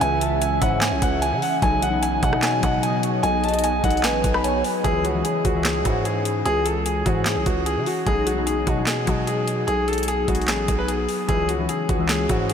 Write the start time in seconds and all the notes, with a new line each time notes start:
Already playing: C#3 E3 G#3 B3 C#4 E4 G#4 E5
0.01 C#2 E5 G#5, closed hi-hat
0.21 A5, closed hi-hat
0.41 G#5, closed hi-hat
0.61 G#2 E3 G#3 C#4 E4 F#5, kick, closed hi-hat
0.81 G#5, snare, clap, closed hi-hat
0.92 B1
1.02 C#2 F#5, kick, closed hi-hat
1.22 G#5, closed hi-hat
1.32 C#3
1.42 F#5, open hi-hat
1.62 B1 F#3 G#3 B3 D#4 F#4 G#4 D#5 G#5, kick, closed hi-hat
1.82 F#5, closed hi-hat
1.92 F#3 G#3 B3 D#4
2.02 G#5, closed hi-hat
2.23 B2 F#5, kick, closed hi-hat
2.32 F#3 G#3 B3 D#4, cross-stick
2.42 G#5, snare, clap, closed hi-hat
2.62 B2 F#3 G#3 B3 D#4 F#5, kick, closed hi-hat
2.83 D#5 G#5, closed hi-hat
3.03 C#5, closed hi-hat
3.23 B1 D#5 G#5, closed hi-hat
3.44 A5, closed hi-hat
3.49 closed hi-hat
3.54 closed hi-hat
3.59 closed hi-hat
3.64 G#5, closed hi-hat
3.83 B1 F#3 G#3 B3 D#4 F#5, kick, closed hi-hat
3.91 closed hi-hat
3.97 closed hi-hat
4.03 A1 B4 G#5, snare, clap, closed hi-hat
4.24 B1, kick, closed hi-hat
4.34 B5, cross-stick
4.44 C#5 G#5, closed hi-hat
4.64 B4, open hi-hat
4.83 C#2 E3 G#3 C#4 E4 G#4, kick, closed hi-hat
5.04 F#4, closed hi-hat
5.14 E3 G#3 C#4 E4
5.25 G#4, closed hi-hat
5.45 C#2 F#4, kick, closed hi-hat
5.54 E3 G#3 C#4 E4
5.65 G#4, snare, clap, closed hi-hat
5.84 G#2 E3 G#3 C#4 E4 F#4, kick, closed hi-hat
6.05 G#4, closed hi-hat
6.25 closed hi-hat
6.45 C#2 G#4, closed hi-hat
6.65 A4, closed hi-hat
6.86 G#4, closed hi-hat
7.05 G#2 E3 G#3 C#4 E4 F#4, kick, closed hi-hat
7.26 G#4, snare, clap, closed hi-hat
7.36 B1
7.46 C#2 F#4, kick, closed hi-hat
7.66 G#4, closed hi-hat
7.76 C#3
7.86 F#4, open hi-hat
8.06 B1 F#3 G#3 B3 D#4 G#4, kick, closed hi-hat
8.26 F#4, closed hi-hat
8.36 F#3 G#3 B3 D#4
8.46 G#4, closed hi-hat
8.67 B2 F#4, kick, closed hi-hat
8.76 F#3 G#3 B3 D#4
8.87 G#4, snare, clap, closed hi-hat
9.07 B2 F#3 G#3 B3 D#4 F#4, kick, closed hi-hat
9.27 G#4, closed hi-hat
9.48 closed hi-hat
9.67 B1 G#4, closed hi-hat
9.88 A4, closed hi-hat
9.93 closed hi-hat
9.98 closed hi-hat
10.03 closed hi-hat
10.08 G#4, closed hi-hat
10.27 B1 F#3 G#3 B3 D#4 F#4, kick, closed hi-hat
10.35 closed hi-hat
10.42 closed hi-hat
10.48 A1 G#4, snare, clap, closed hi-hat
10.68 B1, kick, closed hi-hat
10.79 B4
10.88 G#4, closed hi-hat
11.09 open hi-hat
11.27 C#2 E3 G#3 C#4 E4 G#4, kick, closed hi-hat
11.49 F#4, closed hi-hat
11.58 E3 G#3 C#4 E4
11.69 G#4, closed hi-hat
11.89 C#2 F#4, kick, closed hi-hat
11.98 E3 G#3 C#4 E4
12.09 G#4, snare, clap, closed hi-hat
12.28 G#2 E3 G#3 C#4 E4 F#4, kick, closed hi-hat
12.50 G#4, closed hi-hat